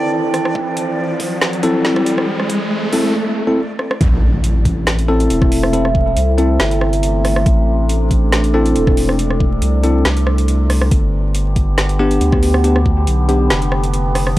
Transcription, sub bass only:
4.01 5.29 A1 loud
5.30 6.15 E1 loud
6.17 6.58 C2 loud
6.60 7.44 G1 medium
7.46 8.74 A1 medium
8.76 9.60 E1 loud
9.62 10.03 C2 loud
10.05 10.90 C2 loud
10.91 12.19 G1 loud
12.21 13.06 D2 loud
13.07 13.49 B1 loud
13.51 14.35 F1 loud

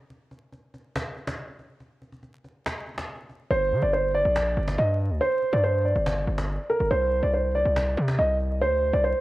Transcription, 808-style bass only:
3.51 3.73 G1 loud
3.72 3.82 D3 loud
3.83 4.23 G1 loud
4.25 4.56 A#1 loud
4.57 4.77 G1 loud
4.78 5.12 G2 loud
5.10 5.20 D2 loud
5.53 5.94 G2 loud
5.95 6.26 G1 loud
6.27 6.58 G1 loud
6.80 6.90 G1 loud
6.91 7.22 C2 loud
7.23 7.64 C2 loud
7.65 7.96 C2 loud
7.97 8.18 C3 loud
8.19 8.63 C2 loud
8.61 8.92 D2 loud
8.93 9.14 C2 loud

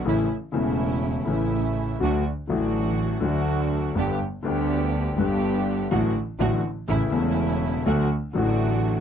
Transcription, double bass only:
0.06 0.27 A1 medium
0.55 1.24 E1 medium
1.28 1.98 A1 medium
2.01 2.22 D2 medium
2.49 3.19 A1 medium
3.23 3.93 D2 medium
3.96 4.17 G1 medium
4.45 5.14 D2 medium
5.18 5.87 G1 medium
5.91 6.11 A1 medium
6.39 6.60 A1 medium
6.88 7.09 A1 medium
7.12 7.82 E1 medium
7.85 8.06 D2 medium
8.34 9.00 A1 loud

